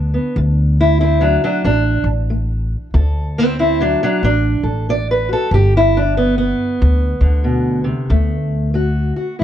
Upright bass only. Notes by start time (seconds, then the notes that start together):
Already playing: D2
0.36 D2
1.64 A1
2.04 A1
2.94 D2
4.23 A1
4.63 A1
5.51 G1
6.82 D2
7.21 D2
8.10 D2